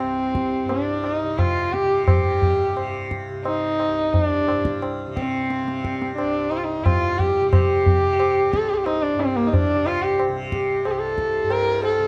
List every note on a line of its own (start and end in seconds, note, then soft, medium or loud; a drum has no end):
0.00 3.87 C2 soft
0.00 0.63 G2 medium
0.00 1.22 C3 medium
0.00 0.71 C4 medium
0.00 tabla na medium
0.35 tabla ke medium
0.63 2.09 G2 medium
0.69 1.06 D4 medium
0.69 tabla na medium
1.04 1.40 D#4 medium
1.04 tabla na soft
1.22 1.83 C3 medium
1.38 1.74 F4 medium
1.38 tabla na medium
1.38 tabla ge medium
1.73 2.06 G4 medium
1.73 tabla te medium
1.83 2.69 C3 medium
2.07 4.47 G2 medium
2.07 3.07 G4 medium
2.07 tabla na medium
2.07 tabla ge medium
2.42 tabla ge medium
2.69 3.29 C3 medium
2.77 tabla na medium
3.11 tabla ke medium
3.29 5.07 C3 medium
3.45 4.13 D#4 medium
3.45 tabla na medium
3.80 tabla na medium
3.88 6.22 C2 medium
4.13 4.24 D#4 medium
4.13 tabla tin medium
4.13 tabla ge medium
4.24 4.82 D4 medium
4.47 6.81 G2 medium
4.47 tabla na medium
4.65 tabla ke medium
4.82 tabla na medium
5.07 5.64 C3 medium
5.16 6.14 C4 medium
5.16 tabla ke medium
5.50 tabla te medium
5.64 7.40 C3 medium
5.68 tabla te medium
5.85 tabla ke medium
6.02 tabla te medium
6.17 6.52 D4 medium
6.17 tabla na medium
6.23 8.57 C2 medium
6.50 6.59 D#4 medium
6.50 tabla na medium
6.57 6.66 F4 medium
6.64 6.86 D#4 medium
6.81 9.14 G2 medium
6.81 7.20 F4 loud
6.86 tabla na medium
6.86 tabla ge medium
7.19 7.51 G4 loud
7.19 tabla ge medium
7.40 7.98 C3 medium
7.51 8.54 G4 loud
7.51 tabla na loud
7.51 tabla ge medium
7.86 tabla ge medium
7.98 9.72 C3 medium
8.20 tabla na medium
8.52 8.71 A4 medium
8.52 tabla ke medium
8.57 10.86 C2 medium
8.69 8.75 G4 medium
8.74 8.87 G4 medium
8.74 8.79 A4 medium
8.86 9.04 D#4 loud
8.86 tabla na medium
9.02 9.21 D4 medium
9.14 11.43 G2 medium
9.20 9.38 C4 medium
9.20 tabla na medium
9.37 9.49 A#3 medium
9.47 9.55 D#4 medium
9.53 9.88 D4 medium
9.53 tabla tin medium
9.53 tabla ge medium
9.72 10.28 C3 medium
9.86 10.04 F4 loud
9.86 tabla na medium
10.03 10.19 G4 medium
10.19 tabla na medium
10.28 12.00 C3 medium
10.52 10.88 G4 medium
10.52 tabla ke medium
10.85 12.07 C2 medium
10.85 10.93 A4 medium
10.85 tabla na medium
10.91 11.01 G4 medium
10.99 11.54 A4 medium
11.18 tabla ke medium
11.43 12.07 G2 medium
11.50 11.84 A#4 loud
11.50 tabla na medium
11.83 12.07 A4 medium
11.83 tabla na medium
12.00 12.07 C3 medium